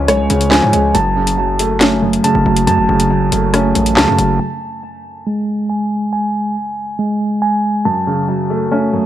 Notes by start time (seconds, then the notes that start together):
Already playing: C#3 F3 G#3 C#4 C#5 G#5
0.08 B1 G#3 C#5, cross-stick, closed hi-hat
0.19 C#2
0.30 C#2 C#3, closed hi-hat
0.41 closed hi-hat
0.51 F3 G#5, snare, clap
0.62 G#2
0.73 C#2 G#3, closed hi-hat
0.95 F#1 F#2 A5, closed hi-hat
1.16 C#3
1.27 closed hi-hat
1.38 F#3
1.59 A3, closed hi-hat
1.81 A3 C#4, snare, clap, closed hi-hat
2.02 F#2
2.13 closed hi-hat
2.24 C#3 A5, closed hi-hat
2.35 F#1
2.46 F#1 F#3
2.57 closed hi-hat
2.67 F#2 A5, closed hi-hat
2.78 F#1
2.89 F#1 C#3
3.00 closed hi-hat
3.10 F#3
3.32 F#1 A3, closed hi-hat
3.54 A3 C#4, cross-stick, closed hi-hat
3.75 A1 F#2, closed hi-hat
3.86 closed hi-hat
3.97 C#2 C#3 A5, snare, clap
4.08 F#2
4.18 F#1 F#3, closed hi-hat
4.40 G#5
5.27 G#3
5.70 G#5
6.13 G#5
6.99 G#3
7.42 G#5
7.85 F#2 A5
8.07 C#3
8.28 F#3
8.50 A3
8.72 A3 C#4
8.93 F#2